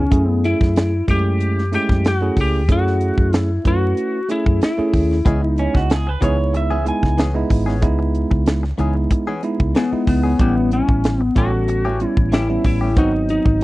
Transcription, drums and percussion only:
0.12 kick, closed hi-hat
0.44 closed hi-hat
0.61 kick, snare
0.76 snare, closed hi-hat
1.08 kick, closed hi-hat
1.40 closed hi-hat
1.59 snare
1.73 closed hi-hat
1.89 kick, snare
2.04 snare, closed hi-hat
2.37 kick, open hi-hat
2.69 kick, closed hi-hat
2.87 snare
3.01 closed hi-hat
3.18 kick
3.33 snare, closed hi-hat
3.65 kick, closed hi-hat
3.97 closed hi-hat
4.29 closed hi-hat
4.46 kick
4.62 snare, closed hi-hat
4.94 kick, open hi-hat
5.12 snare
5.26 kick, closed hi-hat
5.58 closed hi-hat
5.75 kick, snare
5.90 snare, closed hi-hat
6.22 kick, closed hi-hat
6.54 closed hi-hat
6.86 closed hi-hat
7.03 kick, snare
7.18 snare, closed hi-hat
7.50 kick, open hi-hat
7.69 snare
7.82 kick, closed hi-hat
8.15 closed hi-hat
8.31 kick
8.46 snare, closed hi-hat
8.64 snare
8.78 closed hi-hat
9.10 kick, closed hi-hat
9.43 closed hi-hat
9.60 kick
9.75 snare, closed hi-hat
10.07 kick, open hi-hat
10.39 kick, closed hi-hat
10.71 closed hi-hat
10.89 kick
11.04 snare, closed hi-hat
11.36 kick, closed hi-hat
11.68 closed hi-hat
12.00 closed hi-hat
12.17 kick
12.32 snare, closed hi-hat
12.64 kick, open hi-hat
12.97 kick, closed hi-hat
13.29 closed hi-hat
13.46 kick

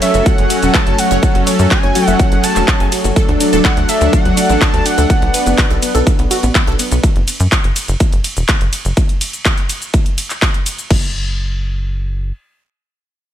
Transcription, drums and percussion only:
0.02 open hi-hat, ride, shaker
0.14 closed hi-hat, shaker
0.26 kick, closed hi-hat, shaker
0.38 closed hi-hat
0.50 open hi-hat, ride, shaker
0.63 closed hi-hat, shaker
0.74 kick, clap, closed hi-hat, shaker
0.87 closed hi-hat
0.99 open hi-hat, ride, shaker
1.11 closed hi-hat, shaker
1.23 kick, closed hi-hat, shaker
1.35 closed hi-hat
1.47 open hi-hat, ride, shaker
1.59 closed hi-hat, shaker
1.71 kick, clap, closed hi-hat, shaker
1.83 closed hi-hat
1.95 open hi-hat, ride, shaker
2.08 closed hi-hat, shaker
2.19 kick, closed hi-hat, shaker
2.32 closed hi-hat
2.44 open hi-hat, ride, shaker
2.56 clap, closed hi-hat, shaker
2.68 kick, clap, closed hi-hat, shaker
2.80 closed hi-hat
2.92 open hi-hat, ride, shaker
3.04 closed hi-hat, shaker
3.16 kick, closed hi-hat, shaker
3.29 closed hi-hat
3.40 open hi-hat, ride, shaker
3.53 closed hi-hat, shaker
3.65 kick, clap, closed hi-hat, shaker
3.77 closed hi-hat
3.89 open hi-hat, ride, shaker
4.01 closed hi-hat, shaker
4.13 kick, closed hi-hat, shaker
4.25 closed hi-hat
4.37 open hi-hat, ride, shaker
4.50 closed hi-hat, shaker
4.61 kick, clap, closed hi-hat, shaker
4.74 closed hi-hat
4.86 open hi-hat, ride, shaker
4.98 closed hi-hat, shaker
5.10 kick, closed hi-hat, shaker
5.22 closed hi-hat
5.34 open hi-hat, ride, shaker
5.46 closed hi-hat, shaker
5.58 kick, clap, closed hi-hat, shaker
5.71 closed hi-hat
5.82 open hi-hat, ride, shaker
5.95 closed hi-hat, shaker
6.07 kick, closed hi-hat, shaker
6.19 closed hi-hat
6.31 open hi-hat, ride, shaker
6.43 closed hi-hat, shaker
6.55 kick, clap, closed hi-hat, shaker
6.67 closed hi-hat
6.79 open hi-hat, ride, shaker
6.92 closed hi-hat, shaker
7.03 kick, closed hi-hat, shaker
7.16 closed hi-hat
7.28 open hi-hat, ride, shaker
7.40 closed hi-hat, shaker
7.52 kick, clap, closed hi-hat, shaker
7.64 closed hi-hat
7.76 open hi-hat, ride, shaker
7.88 closed hi-hat, shaker
8.00 kick, closed hi-hat, shaker
8.12 closed hi-hat
8.24 open hi-hat, ride, shaker
8.37 closed hi-hat, shaker
8.48 kick, clap, closed hi-hat, shaker
8.61 closed hi-hat
8.73 open hi-hat, ride, shaker
8.85 closed hi-hat, shaker
8.97 kick, closed hi-hat, shaker
9.09 closed hi-hat
9.21 open hi-hat, ride, shaker
9.33 closed hi-hat, shaker
9.45 kick, clap, closed hi-hat, shaker
9.58 closed hi-hat
9.69 open hi-hat, ride, shaker
9.82 closed hi-hat, shaker
9.94 kick, closed hi-hat, shaker
10.06 closed hi-hat
10.18 open hi-hat, ride, shaker
10.30 clap, closed hi-hat, shaker
10.42 kick, clap, open hi-hat, shaker
10.54 closed hi-hat
10.66 open hi-hat, ride, shaker
10.79 closed hi-hat, shaker
10.90 kick, crash

